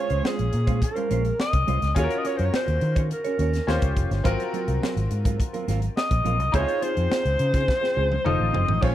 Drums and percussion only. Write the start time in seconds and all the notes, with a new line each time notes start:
0.10 closed hi-hat
0.25 snare
0.39 closed hi-hat
0.53 closed hi-hat
0.67 kick, closed hi-hat
0.82 kick, closed hi-hat
0.96 closed hi-hat
1.11 closed hi-hat
1.25 closed hi-hat
1.40 snare
1.53 kick, closed hi-hat
1.68 closed hi-hat
1.82 snare, closed hi-hat
1.96 kick, closed hi-hat
2.10 closed hi-hat
2.25 closed hi-hat
2.39 closed hi-hat
2.54 snare
2.68 closed hi-hat
2.81 closed hi-hat
2.96 kick, closed hi-hat
3.11 closed hi-hat
3.25 closed hi-hat
3.39 closed hi-hat
3.53 snare, closed hi-hat
3.69 snare
3.82 kick, closed hi-hat
3.97 kick, closed hi-hat
4.11 snare, closed hi-hat
4.25 kick, closed hi-hat
4.40 closed hi-hat
4.54 closed hi-hat
4.68 closed hi-hat
4.83 snare
4.97 closed hi-hat
5.11 closed hi-hat
5.25 kick, closed hi-hat
5.40 kick, closed hi-hat
5.54 closed hi-hat
5.68 snare, closed hi-hat
5.82 closed hi-hat
5.97 snare
6.11 kick, closed hi-hat
6.26 closed hi-hat
6.40 closed hi-hat
6.54 kick, closed hi-hat
6.68 closed hi-hat
6.83 closed hi-hat
6.97 closed hi-hat
7.11 snare
7.25 closed hi-hat
7.39 closed hi-hat
7.54 kick, snare, closed hi-hat
7.68 kick, snare
7.84 snare
8.12 high tom
8.26 mid tom
8.54 floor tom
8.68 floor tom
8.82 kick, crash